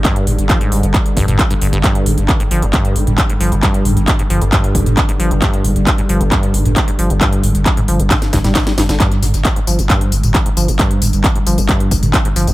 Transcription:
<<
  \new Staff \with { instrumentName = "Synth drone" } { \clef bass \time 4/4 \key c \minor \tempo 4 = 134 <g, d>1~ | <g, d>1~ | <g, d>1~ | <g, d>1~ |
<g, d>1 | <g, d>1~ | <g, d>1 | }
  \new Staff \with { instrumentName = "Acid bass" } { \clef bass \time 4/4 \key c \minor g,8 aes,16 g,16 f16 aes,8 g,16 g,16 r16 g,16 g,16 g,,16 g,16 g,16 g,16 | g,8 aes,16 g,16 r16 aes,16 f16 g,16 g,8 aes,16 g,16 r16 aes,16 f16 g,16 | g,8 aes,16 g,16 r16 aes,16 f16 g,16 g,8 aes,16 g,16 r16 aes,16 f16 g,16 | g,8 aes,16 g,16 r16 aes,16 f16 g,16 g,8 aes,16 g,16 r16 aes,16 f16 g,16 |
g,8 aes,16 g,16 r16 aes,16 f16 g,16 g,16 r16 g,16 g16 aes,16 g16 g,16 d16 | g,8 aes,16 g,16 r16 aes,16 f16 g,16 g,8 aes,16 g,16 r16 aes,16 f16 g,16 | g,8 aes,16 g,16 r16 aes,16 f16 g,16 g,8 aes,16 g,16 r16 aes,16 f16 g,16 | }
  \new Staff \with { instrumentName = "Sub bass" } { \clef bass \time 4/4 \key c \minor r8 g,,16 g,,16 r8 g,,16 g,,16 r8 g,,16 g,,16 r8 g,,16 g,,16 | r8 g,,16 g,,16 r8 g,,16 g,,16 r8 g,,16 g,,16 r8 g,,16 g,,16 | r8 g,,16 g,,16 r8 g,,16 g,,16 r8 g,,16 g,,16 r8 g,,16 g,,16 | r8 g,,16 g,,16 r8 g,,16 g,,16 r8 g,,16 g,,16 r8 g,,16 g,,16 |
r8 g,,16 g,,16 r8 g,,16 g,,16 r8 g,,16 g,,16 r8 g,,16 g,,16 | r8 g,,16 g,,16 r8 g,,16 g,,16 r8 g,,16 g,,16 r8 g,,16 g,,16 | r8 g,,16 g,,16 r8 g,,16 g,,16 r8 g,,16 g,,16 r8 g,,16 g,,16 | }
  \new DrumStaff \with { instrumentName = "Drums" } \drummode { \time 4/4 <hc hh bd>16 hh16 <hho toml>16 hh16 <hc hh bd>16 hh16 hho16 hh16 <hc hh bd>16 hh16 <hho bd>16 <hh toml>16 <hc hh bd>16 hh16 hho16 hh16 | <hc hh bd>16 hh16 <hho toml>16 hh16 <hc hh bd>16 hh16 hho16 hh16 <hc hh bd>16 hh16 hho16 <hh toml>16 <hc hh bd>16 hh16 hho16 hh16 | <hc hh bd>16 hh16 <hho toml>16 hh16 <hc hh bd>16 hh16 hho16 hh16 <hc hh bd>16 hh16 <hho bd>16 <hh toml>16 <hc hh bd>16 hh16 hho16 hh16 | <hc hh bd>16 hh16 <hho toml>16 hh16 <hc hh bd>16 hh16 hho16 hh16 <hc hh bd>16 hh16 hho16 <hh toml>16 <hc hh bd>16 hh16 hho16 hh16 |
<hc hh bd>16 hh16 <hho toml>16 hh16 <hc hh bd>16 <hh toml>16 hho16 hh16 <hc hh bd sn toml>16 <hh sn>16 <hho bd sn>16 <hh sn toml>16 <hc hh bd sn>16 <hh sn>16 <hho sn>16 <hh sn>16 | <hc hh bd tamb>16 hh16 <hho tamb toml>16 <hh tamb>16 <hc hh bd tamb>16 hh16 <hho tamb>16 <hh tamb>16 <hc hh bd tamb>16 hh16 <hho tamb>16 <hh tamb toml>16 <hc hh bd tamb>16 hh16 <hho tamb>16 <hh tamb>16 | <hc hh bd tamb>16 hh16 <hho tamb toml>16 <hh tamb>16 <hc hh bd tamb>16 hh16 <hho tamb>16 <hh tamb>16 <hc hh bd tamb>16 hh16 <hho bd tamb>16 <hh tamb toml>16 <hc hh bd tamb>16 hh16 <hho tamb>16 <hh tamb>16 | }
>>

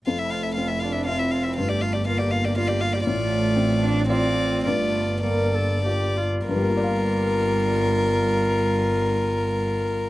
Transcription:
<<
  \new Staff \with { instrumentName = "Violin" } { \time 3/4 \key g \dorian \tempo 4 = 104 f''16 e''16 f''16 e''16 f''16 e''16 f''16 e''16 f''16 e''16 f''16 e''16 | f''16 d''16 f''16 d''16 f''16 d''16 f''16 d''16 f''16 d''16 f''16 d''16 | d''2 d''4 | d''4 d''4. r8 |
bes'2.~ | bes'2. | }
  \new Staff \with { instrumentName = "Viola" } { \time 3/4 \key g \dorian f'16 e'16 f'16 e'16 f'16 e'16 f'16 e'16 f'16 e'16 f'16 e'16 | f'16 g'16 f'16 g'16 f'16 g'16 f'16 g'16 f'16 g'16 f'16 g'16 | f'2 f'4 | f'4 bes'8 a'8 g'8 f'8 |
f'2.~ | f'2. | }
  \new Staff \with { instrumentName = "Felt piano" } { \time 3/4 \key g \dorian f,4 c'4 <f' e''>4 | g,4 bes4 <f' d''>4 | a,4 c'4 <f' d''>4 | g,4 bes4 <f' d''>4 |
<g, g bes f' d'' f''>2.~ | <g, g bes f' d'' f''>2. | }
  \new Staff \with { instrumentName = "Cello" } { \time 3/4 \key g \dorian a4. d'8 c'4 | a4 bes2 | a4. d'8 c'4 | a4 g4 r4 |
g2.~ | g2. | }
  \new Staff \with { instrumentName = "Double bass" } { \clef bass \time 3/4 \key g \dorian f,,2. | g,,2. | a,,2. | g,,2. |
g,,2.~ | g,,2. | }
>>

